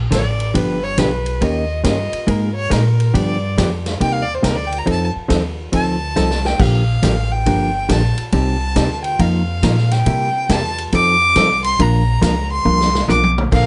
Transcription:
Already playing: A#1
0.11 A1 D3 F3 A#3 D4 A4 D5, kick, snare, hi-hat pedal, ride
0.40 ride
0.54 G1 D3 F3 B3 D4 G4 B4, kick, ride
0.83 C#5
0.98 B1 D3 F3 B3 D4 G4 B4, kick, snare, hi-hat pedal, ride
1.26 ride
1.41 D#2 D#3 A#3 C#4 G4 A#4 D#5, kick, ride
1.84 G2 D#3 A#3 C#4 G4 A#4 D#5, kick, snare, hi-hat pedal, ride
2.13 muted upright bass stroke, ride
2.27 G#2 G#3 A#3 D#4 G#4 A#4, kick, ride
2.55 C#5
2.70 A#2 G#3 A#3 D#4 G#4 A#4, kick, snare, hi-hat pedal, ride
3.00 ride
3.14 G2 D3 F3 B3 D4 G4 D5, kick, ride
3.58 F2 D3 F3 B3 D4 G4, kick, snare, hi-hat pedal, ride
3.86 snare, ride
4.00 D#2 C3 G3 A#3 D#4 G4 G5, kick, ride
4.12 F5
4.22 D5
4.34 C5
4.43 D2 C3 G3 A#3 D#4 G4 A#4, kick, snare, hi-hat pedal, ride
4.56 D5
4.67 G5
4.72 ride
4.78 A#5
4.86 F2 F3 C4 D#4 A4, kick, ride
4.91 A5
5.16 muted upright bass stroke
5.28 D#2 F3 C4 D#4 A4, kick, snare, hi-hat pedal, ride
5.72 D2 F3 C4 D#4 A4 A5, kick, ride
6.16 C2 F3 C4 D#4 A4, snare, hi-hat pedal
6.31 snare
6.45 G5, snare
6.59 A#1 D3 F3 A#3 D4 G4 F5, kick, crash
7.02 A1 D3 F3 A#3 D4 G4, kick, snare, hi-hat pedal, ride
7.32 G5
7.46 G1 D3 F3 A#3 D4 G4, kick, ride
7.89 A#1 D3 F3 A#3 D4 G4 A5, kick, snare, hi-hat pedal, ride
8.17 muted upright bass stroke, ride
8.32 C2 C3 G3 C4 D#4 G4 D5 A5, kick, ride
8.76 D2 C3 G3 C4 D#4 G4 D5, kick, snare, hi-hat pedal, ride
9.04 G5, ride
9.19 F2 F3 A#3 D#4 F4 A#4 F5, kick, ride
9.63 A#2 F3 A#3 D#4 F4 A#4, kick, snare, hi-hat pedal, ride
9.77 snare
9.91 G5, snare, ride
10.06 C3 G3 A#3 E4 G4, kick, ride
10.49 E2 C3 G3 A#3 E4 G4 A5, kick, snare, hi-hat pedal, ride
10.78 ride
10.92 F2 F3 C4 D#4 A4 D6, kick, ride
11.36 C2 F3 C4 D#4 A4, kick, snare, hi-hat pedal, ride
11.64 C6, ride
11.79 A#1 F3 A#3 D4 F4 A#4 A#5, kick, ride
12.21 C#2 F3 A#3 D4 F4 A#4, kick, snare, hi-hat pedal, ride
12.51 C6
12.65 C2 F3 A#3 D4 F4 A#4
12.81 snare
12.95 snare
13.08 B1 F3 A#3 D4 F4 A#4 D6, hi-hat pedal, high tom
13.24 high tom
13.38 mid tom
13.51 A#1 D3 F3 A#3 D4 A4 A#4 F5, kick, crash

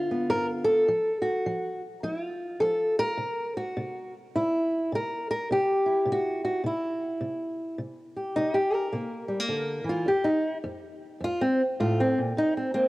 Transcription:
Already playing: G2 D3 F4
0.11 B3
0.30 G2 A#4
0.65 A4
0.88 F3
1.22 F#4
1.46 F3
2.03 F3 E4
2.24 F4
2.60 F3 A4
2.99 A#4
3.17 C3
3.57 F#4
3.77 C3
4.36 C3 E4
4.92 C3 A#4
5.31 A#4
5.51 C3 G4
5.86 E4
6.05 C3
6.12 F#4
6.45 F#4
6.64 C3 E4
7.21 C3
7.78 C3
8.17 G4
8.36 C3 D#4
8.54 G4
8.74 A#4
8.92 C3 A#3
9.28 G3
9.40 A#3
9.49 D3
9.84 E3
9.89 F4
10.06 F2 G4
10.24 D#4
10.64 F2
11.21 F2 F4
11.42 C4
11.80 A2 F4
12.00 C4
12.18 A#2
12.37 C3 D#4
12.57 C4
12.74 A#3 C4

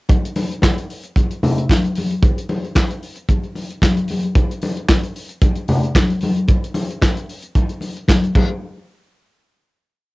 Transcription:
0.09 kick, closed hi-hat, muted conga
0.25 closed hi-hat
0.36 open hi-hat, muted conga
0.51 closed hi-hat
0.62 kick, snare, clap, high conga
0.78 closed hi-hat
0.90 open hi-hat
1.04 closed hi-hat
1.16 kick, closed hi-hat, muted conga
1.31 closed hi-hat
1.43 open hi-hat, muted conga, low conga
1.58 closed hi-hat
1.70 kick, snare, clap, high conga
1.85 closed hi-hat
1.95 open hi-hat, high conga
2.11 closed hi-hat
2.22 kick, closed hi-hat, muted conga
2.38 closed hi-hat
2.49 open hi-hat, muted conga
2.64 closed hi-hat
2.75 kick, snare, clap, high conga
2.90 closed hi-hat
3.03 open hi-hat
3.16 closed hi-hat
3.29 kick, closed hi-hat, muted conga
3.43 closed hi-hat
3.55 open hi-hat, muted conga
3.70 closed hi-hat
3.82 kick, snare, clap, high conga
3.97 closed hi-hat
4.08 open hi-hat, high conga
4.23 closed hi-hat
4.35 kick, closed hi-hat, muted conga
4.51 closed hi-hat
4.61 open hi-hat, muted conga
4.77 closed hi-hat
4.89 kick, snare, clap, high conga
5.03 closed hi-hat
5.15 open hi-hat
5.29 closed hi-hat
5.41 kick, closed hi-hat, muted conga
5.55 closed hi-hat
5.68 open hi-hat, low conga
5.83 closed hi-hat
5.95 kick, snare, clap, high conga
6.10 closed hi-hat
6.20 open hi-hat, high conga
6.36 closed hi-hat
6.48 kick, closed hi-hat, muted conga
6.64 closed hi-hat
6.74 open hi-hat, muted conga
6.90 closed hi-hat
7.01 kick, snare, clap, high conga
7.17 closed hi-hat
7.29 open hi-hat
7.42 closed hi-hat
7.55 kick, closed hi-hat, muted conga
7.69 closed hi-hat
7.81 open hi-hat, muted conga
7.96 closed hi-hat
8.08 kick, snare, clap, high conga
8.24 closed hi-hat
8.35 kick, crash, muted conga

